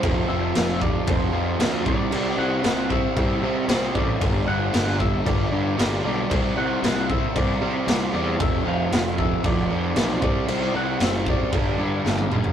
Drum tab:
CC |x---x---x---x---|x---x---x---x---|x---x---x---x---|x---x---x---x---|
SD |----o-------o---|----o-------o---|----o-------o---|----o-------o---|
T1 |----------------|----------------|----------------|----------------|
T2 |----------------|----------------|----------------|----------------|
FT |----------------|----------------|----------------|----------------|
BD |o-----o-o-----o-|------o-o-----o-|o-----o-o-------|o-----o-o-------|

CC |x---x---x---x---|x---x---x-------|
SD |----o-------o---|----o-------o---|
T1 |----------------|-------------o--|
T2 |----------------|--------------o-|
FT |----------------|---------------o|
BD |o-----o-o-----o-|------o-o-------|